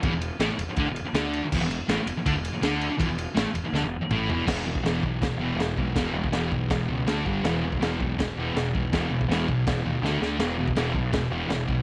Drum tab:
CC |----------------|x---------------|----------------|x---x---x---x---|
RD |x-x-x-x-x-x-x-x-|--x-x-x-x-x-x-x-|x-x-x-x---------|----------------|
SD |----o-------o---|----o-------o---|----o---o-------|o---o---o---o---|
T2 |----------------|----------------|------------o---|----------------|
FT |----------------|----------------|--------------o-|----------------|
BD |o-------o-------|o-------o-------|o---------------|o--o--o-o-----o-|

CC |x---x---x---x---|x---x---x---x---|x---x---x-------|x---x---x---x---|
RD |----------------|----------------|----------------|----------------|
SD |o---o---o---o---|o---o---o---o---|o---o---o---o-o-|o---o---o---o---|
T2 |----------------|----------------|----------------|----------------|
FT |----------------|----------------|----------------|----------------|
BD |o--o--o-o-----o-|---o--o-o-----o-|o--o--o-o-------|---o--o-o-----o-|